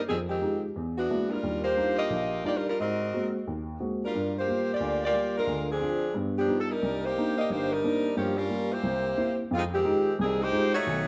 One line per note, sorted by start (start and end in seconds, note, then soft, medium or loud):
0.08 0.38 F2 medium
0.08 0.18 D#3 medium
0.08 0.38 F3 medium
0.08 0.18 G3 medium
0.08 0.18 C4 medium
0.08 0.18 G#4 medium
0.29 0.61 D#3 medium
0.29 0.61 G#3 medium
0.29 0.61 C4 medium
0.29 0.61 G4 medium
0.41 0.64 G#3 soft
0.41 0.65 D#4 soft
0.41 0.65 F4 soft
0.41 0.65 G4 medium
0.76 1.05 E2 medium
0.98 1.29 E3 medium
0.98 1.30 B3 medium
0.98 1.29 D4 medium
0.98 1.29 F#4 medium
1.10 1.32 G#3 soft
1.10 1.33 A#3 soft
1.10 1.33 D4 soft
1.10 1.33 E4 soft
1.31 1.65 G3 medium
1.31 1.65 D4 medium
1.31 1.63 F4 medium
1.31 1.65 A#4 medium
1.43 1.72 D#2 medium
1.43 1.72 G3 medium
1.64 1.96 A#3 medium
1.64 1.96 F4 medium
1.64 1.96 G4 medium
1.64 1.96 C5 medium
1.77 2.00 G3 soft
1.77 2.00 D4 soft
1.77 2.00 D#4 soft
1.77 2.00 F4 soft
1.98 2.42 A#3 medium
1.98 2.41 F4 medium
1.98 2.41 G4 medium
1.98 2.41 D#5 loud
2.10 2.39 A#1 medium
2.44 2.67 G3 soft
2.44 2.56 A#3 medium
2.44 2.67 D4 soft
2.44 2.67 D#4 soft
2.44 2.67 F4 soft
2.44 2.56 F4 medium
2.44 2.56 G4 medium
2.44 2.56 D5 medium
2.57 2.67 G3 medium
2.57 2.68 D4 medium
2.57 2.68 F4 medium
2.57 2.68 A#4 medium
2.69 2.79 G3 medium
2.69 2.79 D4 medium
2.69 2.79 F4 medium
2.69 2.79 A#4 medium
2.80 3.08 G#2 medium
2.80 3.31 C4 medium
2.80 3.31 F#4 medium
2.80 3.31 A#4 medium
2.80 3.31 D#5 medium
3.14 3.35 G#3 soft
3.14 3.35 A#3 soft
3.14 3.36 C4 soft
3.14 3.35 F#4 soft
3.47 3.75 D#2 medium
3.80 4.02 G#3 soft
3.80 4.02 A#3 soft
3.80 4.02 C4 soft
3.80 4.02 F#4 soft
4.05 4.34 G3 medium
4.05 4.34 D4 medium
4.05 4.34 F4 medium
4.05 4.34 A#4 medium
4.15 4.43 G2 medium
4.39 4.70 A#3 medium
4.39 4.70 F4 medium
4.39 4.70 G4 medium
4.39 4.70 C5 medium
4.48 4.69 G3 soft
4.48 4.70 A#3 soft
4.48 4.70 F4 soft
4.73 5.04 A#3 medium
4.73 5.04 F4 medium
4.73 5.04 G4 medium
4.73 5.04 D5 medium
4.80 5.09 D2 medium
5.05 5.35 A#3 medium
5.05 5.35 F4 medium
5.05 5.35 G4 medium
5.05 5.35 D5 medium
5.13 5.36 G3 soft
5.13 5.36 A#3 soft
5.13 5.36 F4 soft
5.38 5.68 G#3 medium
5.38 5.68 D4 medium
5.38 5.68 F4 medium
5.38 5.68 A#4 medium
5.47 5.76 D2 medium
5.47 5.76 D3 medium
5.72 6.16 F3 medium
5.72 6.17 C4 medium
5.72 6.17 D4 medium
5.72 6.16 G#4 medium
5.80 6.03 C4 soft
5.80 6.03 D4 soft
5.80 6.04 F4 soft
6.14 6.43 G2 medium
6.14 6.43 B3 medium
6.38 6.60 F3 medium
6.38 6.61 B3 medium
6.38 6.60 D4 medium
6.38 6.60 G4 medium
6.48 6.70 G3 soft
6.48 6.71 B3 soft
6.48 6.71 D#4 soft
6.48 6.71 F4 soft
6.60 6.69 A4 medium
6.70 7.04 G3 medium
6.70 7.04 D4 medium
6.70 7.04 D#4 medium
6.70 7.03 A#4 medium
6.82 7.11 C2 medium
7.05 7.36 A#3 medium
7.05 7.38 D#4 medium
7.05 7.37 G4 medium
7.05 7.38 C5 medium
7.17 7.39 A#3 soft
7.17 7.39 C4 soft
7.17 7.39 D4 soft
7.17 7.39 D#4 soft
7.38 7.49 A#3 medium
7.38 7.49 D4 medium
7.38 7.49 G4 medium
7.38 7.49 D#5 medium
7.50 7.79 G1 medium
7.50 7.79 G2 medium
7.50 7.71 A#3 medium
7.50 7.71 D#4 medium
7.50 7.71 G4 medium
7.50 7.72 C5 medium
7.72 8.17 G3 medium
7.72 8.17 D4 medium
7.72 8.17 D#4 medium
7.72 8.17 A#4 medium
7.84 8.06 A#3 soft
7.84 8.06 C4 soft
7.84 8.06 D4 soft
7.84 8.06 D#4 soft
8.17 8.45 G2 medium
8.17 8.37 F3 medium
8.17 8.46 G3 medium
8.17 8.36 A#3 medium
8.17 8.37 C#4 medium
8.17 8.37 G4 medium
8.37 8.71 G3 medium
8.37 8.71 C#4 medium
8.37 8.71 F4 medium
8.37 8.71 A#4 medium
8.50 8.73 G3 soft
8.50 8.72 A#3 soft
8.50 8.72 F4 soft
8.73 9.39 A#3 medium
8.73 9.39 E4 medium
8.73 9.39 G4 medium
8.73 9.39 C5 medium
8.83 9.12 C2 medium
9.17 9.40 A#3 soft
9.17 9.40 C4 soft
9.17 9.40 E4 medium
9.51 9.80 F2 medium
9.51 9.63 G#3 medium
9.51 9.63 F4 medium
9.55 9.64 C4 medium
9.55 9.64 D#4 medium
9.74 10.17 D#3 medium
9.74 10.17 G#3 medium
9.74 10.16 C4 medium
9.74 10.16 G4 medium
9.85 10.07 G#3 soft
9.85 10.07 D#4 soft
9.85 10.07 F4 soft
9.85 10.07 G4 medium
10.19 10.48 C2 medium
10.19 10.41 D#3 medium
10.19 10.41 G3 medium
10.19 10.41 C4 medium
10.19 10.41 G#4 medium
10.41 10.74 G#3 medium
10.41 10.74 D#4 medium
10.41 10.74 G4 medium
10.41 10.74 C5 loud
10.53 10.75 G#3 soft
10.53 10.75 D#4 soft
10.53 10.75 F4 soft
10.53 10.75 G4 medium
10.75 11.07 A3 medium
10.75 11.07 D#4 loud
10.75 11.07 F#4 medium
10.75 11.07 C#5 loud
10.87 11.07 B1 medium
10.87 11.07 D#3 medium